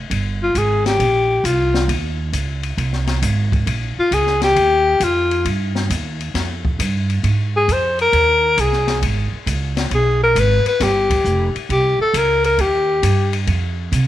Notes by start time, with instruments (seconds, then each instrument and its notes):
0.10 upright bass G1, kick, ride
0.43 alto saxophone F4
0.55 upright bass G#1, alto saxophone G#4, kick, hi-hat pedal, ride
0.86 alto saxophone G4, snare, ride
0.99 upright bass A#1, kick, ride
1.44 upright bass C2, alto saxophone F4, kick, hi-hat pedal, ride
1.74 snare
1.88 upright bass D#2, kick, ride
2.33 upright bass C#2, kick, hi-hat pedal, ride
2.63 ride
2.77 upright bass C2, kick, ride
2.93 snare
3.07 snare, ride
3.22 upright bass G#1, kick, hi-hat pedal, ride
3.52 kick, ride
3.66 upright bass A#1, kick, ride
3.98 alto saxophone F4, muted upright bass stroke
4.11 upright bass C#2, alto saxophone G#4, kick, hi-hat pedal, ride
4.27 snare
4.41 alto saxophone G4, snare, ride
4.56 upright bass D#2, kick, ride
5.00 upright bass F2, alto saxophone F4, kick, hi-hat pedal, ride
5.31 ride
5.45 upright bass G2, kick, ride
5.75 snare
5.90 upright bass D#2, kick, hi-hat pedal, ride
6.21 ride
6.34 upright bass F2, kick, snare, ride
6.65 kick
6.79 upright bass G2, kick, hi-hat pedal, ride
7.10 ride
7.23 upright bass G#2, kick, ride
7.56 alto saxophone G#4
7.68 upright bass F2, kick, hi-hat pedal, ride
7.72 alto saxophone C5
7.99 alto saxophone A#4, ride
8.13 upright bass D#2, kick, ride
8.57 upright bass C2, alto saxophone G#4, kick, hi-hat pedal, ride
8.72 snare
8.87 snare, ride
9.02 upright bass G#1, kick, ride
9.32 muted upright bass stroke
9.46 upright bass C#2, kick, hi-hat pedal, ride
9.77 snare, ride
9.91 upright bass B1, kick, ride
9.95 alto saxophone G#4
10.24 alto saxophone A#4
10.35 upright bass G#1, kick, hi-hat pedal, ride
10.40 alto saxophone B4
10.66 alto saxophone B4, ride
10.80 upright bass G1, alto saxophone G4, kick, snare, ride
11.10 kick, ride
11.24 upright bass F1, kick, hi-hat pedal
11.55 muted upright bass stroke, ride
11.69 upright bass C2, alto saxophone G4, kick, ride
11.99 alto saxophone A4, muted upright bass stroke
12.13 upright bass C#2, alto saxophone A#4, kick, hi-hat pedal, ride
12.44 alto saxophone A#4, ride
12.58 upright bass D#2, alto saxophone G4, kick, ride
13.03 upright bass G2, kick, hi-hat pedal, ride
13.33 ride
13.47 upright bass F2, kick, ride
13.92 upright bass C3, kick, hi-hat pedal, ride